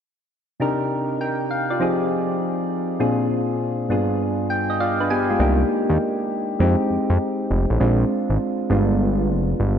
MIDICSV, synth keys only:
0, 0, Header, 1, 2, 480
1, 0, Start_track
1, 0, Key_signature, -3, "minor"
1, 0, Tempo, 600000
1, 478, Time_signature, 4, 2, 24, 8
1, 7830, End_track
2, 0, Start_track
2, 0, Title_t, "Synth keys"
2, 0, Program_c, 0, 88
2, 478, Note_on_c, 0, 48, 69
2, 482, Note_on_c, 0, 62, 64
2, 486, Note_on_c, 0, 63, 65
2, 489, Note_on_c, 0, 67, 61
2, 495, Note_on_c, 0, 70, 78
2, 623, Control_c, 0, 64, 127
2, 954, Note_off_c, 0, 67, 0
2, 957, Note_off_c, 0, 70, 0
2, 966, Note_on_c, 0, 79, 60
2, 970, Note_on_c, 0, 70, 51
2, 1190, Note_off_c, 0, 79, 0
2, 1192, Note_off_c, 0, 70, 0
2, 1205, Note_on_c, 0, 77, 63
2, 1350, Note_off_c, 0, 77, 0
2, 1363, Note_on_c, 0, 74, 62
2, 1366, Note_on_c, 0, 65, 50
2, 1418, Note_off_c, 0, 48, 0
2, 1420, Note_off_c, 0, 62, 0
2, 1422, Note_off_c, 0, 63, 0
2, 1437, Note_on_c, 0, 53, 71
2, 1443, Note_on_c, 0, 60, 61
2, 1446, Note_on_c, 0, 63, 60
2, 1447, Control_c, 0, 64, 0
2, 1451, Note_on_c, 0, 67, 63
2, 1457, Note_on_c, 0, 68, 77
2, 1564, Control_c, 0, 64, 127
2, 1587, Note_off_c, 0, 74, 0
2, 1588, Note_off_c, 0, 65, 0
2, 2378, Note_off_c, 0, 53, 0
2, 2381, Note_off_c, 0, 60, 0
2, 2383, Note_off_c, 0, 63, 0
2, 2385, Note_off_c, 0, 67, 0
2, 2388, Note_off_c, 0, 68, 0
2, 2396, Note_on_c, 0, 46, 71
2, 2398, Note_on_c, 0, 60, 68
2, 2400, Note_on_c, 0, 62, 64
2, 2402, Note_on_c, 0, 65, 62
2, 2404, Note_on_c, 0, 68, 75
2, 2408, Control_c, 0, 64, 0
2, 2547, Control_c, 0, 64, 127
2, 3112, Note_off_c, 0, 62, 0
2, 3113, Note_on_c, 0, 43, 70
2, 3117, Note_off_c, 0, 46, 0
2, 3117, Note_off_c, 0, 65, 0
2, 3118, Note_off_c, 0, 60, 0
2, 3118, Note_on_c, 0, 59, 59
2, 3121, Note_off_c, 0, 68, 0
2, 3122, Note_on_c, 0, 62, 63
2, 3126, Control_c, 0, 64, 0
2, 3127, Note_on_c, 0, 65, 65
2, 3132, Note_on_c, 0, 68, 71
2, 3284, Control_c, 0, 64, 127
2, 3600, Note_on_c, 0, 79, 70
2, 3744, Note_off_c, 0, 79, 0
2, 3758, Note_on_c, 0, 75, 64
2, 3823, Note_off_c, 0, 59, 0
2, 3825, Note_off_c, 0, 62, 0
2, 3828, Note_off_c, 0, 65, 0
2, 3831, Note_off_c, 0, 68, 0
2, 3833, Note_off_c, 0, 75, 0
2, 3843, Note_on_c, 0, 74, 63
2, 3843, Note_on_c, 0, 77, 71
2, 3847, Note_on_c, 0, 65, 54
2, 3989, Note_off_c, 0, 74, 0
2, 3992, Note_off_c, 0, 65, 0
2, 4003, Note_on_c, 0, 71, 69
2, 4007, Note_on_c, 0, 62, 57
2, 4064, Note_off_c, 0, 77, 0
2, 4078, Note_off_c, 0, 71, 0
2, 4080, Note_off_c, 0, 62, 0
2, 4082, Note_on_c, 0, 80, 73
2, 4086, Note_on_c, 0, 67, 73
2, 4087, Note_on_c, 0, 59, 59
2, 4231, Note_off_c, 0, 67, 0
2, 4232, Note_off_c, 0, 59, 0
2, 4238, Note_on_c, 0, 65, 64
2, 4244, Note_on_c, 0, 56, 52
2, 4291, Note_off_c, 0, 43, 0
2, 4303, Note_off_c, 0, 80, 0
2, 4313, Note_on_c, 0, 58, 67
2, 4318, Note_on_c, 0, 62, 61
2, 4324, Note_on_c, 0, 63, 63
2, 4329, Control_c, 0, 64, 0
2, 4331, Note_on_c, 0, 67, 81
2, 4464, Note_off_c, 0, 65, 0
2, 4467, Note_off_c, 0, 56, 0
2, 4467, Control_c, 0, 64, 127
2, 5256, Note_off_c, 0, 58, 0
2, 5259, Note_off_c, 0, 62, 0
2, 5262, Note_off_c, 0, 63, 0
2, 5265, Note_off_c, 0, 67, 0
2, 5275, Note_on_c, 0, 56, 68
2, 5282, Note_on_c, 0, 60, 62
2, 5288, Control_c, 0, 64, 0
2, 5288, Note_on_c, 0, 63, 64
2, 5294, Note_on_c, 0, 67, 70
2, 5425, Control_c, 0, 64, 127
2, 6217, Note_off_c, 0, 56, 0
2, 6221, Note_off_c, 0, 60, 0
2, 6224, Note_off_c, 0, 63, 0
2, 6226, Note_off_c, 0, 67, 0
2, 6238, Note_on_c, 0, 56, 74
2, 6240, Note_on_c, 0, 60, 62
2, 6245, Note_on_c, 0, 62, 67
2, 6248, Control_c, 0, 64, 0
2, 6248, Note_on_c, 0, 65, 71
2, 6376, Control_c, 0, 64, 127
2, 6949, Note_off_c, 0, 56, 0
2, 6959, Note_off_c, 0, 60, 0
2, 6959, Note_on_c, 0, 56, 70
2, 6961, Note_off_c, 0, 62, 0
2, 6963, Note_off_c, 0, 65, 0
2, 6966, Note_on_c, 0, 59, 64
2, 6968, Control_c, 0, 64, 0
2, 6971, Note_on_c, 0, 62, 68
2, 6978, Note_on_c, 0, 65, 71
2, 7128, Control_c, 0, 64, 127
2, 7830, Note_off_c, 0, 56, 0
2, 7830, Note_off_c, 0, 59, 0
2, 7830, Note_off_c, 0, 62, 0
2, 7830, Note_off_c, 0, 65, 0
2, 7830, End_track
0, 0, End_of_file